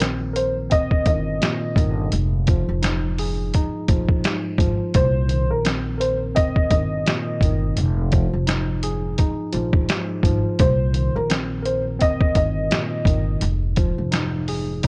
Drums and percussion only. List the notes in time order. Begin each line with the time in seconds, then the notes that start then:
0.00 snare, closed hi-hat
0.36 closed hi-hat
0.71 kick, closed hi-hat
0.91 kick
1.06 kick, closed hi-hat
1.42 snare, closed hi-hat
1.76 kick, closed hi-hat
2.12 closed hi-hat
2.47 kick, closed hi-hat
2.83 snare, closed hi-hat
3.18 open hi-hat
3.54 kick, closed hi-hat
3.88 kick, closed hi-hat
4.08 kick
4.24 snare, closed hi-hat
4.58 kick, closed hi-hat
4.94 kick, closed hi-hat
5.29 closed hi-hat
5.65 snare, closed hi-hat
6.01 closed hi-hat
6.36 kick, closed hi-hat
6.56 kick
6.70 kick, closed hi-hat
7.06 snare, closed hi-hat
7.41 kick, closed hi-hat
7.76 closed hi-hat
8.12 kick, closed hi-hat
8.47 snare, closed hi-hat
8.83 closed hi-hat
9.18 kick, closed hi-hat
9.53 closed hi-hat
9.73 kick
9.89 snare, closed hi-hat
10.23 kick, closed hi-hat
10.59 kick, closed hi-hat
10.94 closed hi-hat
11.30 snare, closed hi-hat
11.65 closed hi-hat
12.01 kick, closed hi-hat
12.21 kick
12.35 kick, closed hi-hat
12.71 snare, closed hi-hat
13.05 kick, closed hi-hat
13.41 closed hi-hat
13.76 kick, closed hi-hat
14.12 snare, closed hi-hat
14.48 open hi-hat
14.83 kick, closed hi-hat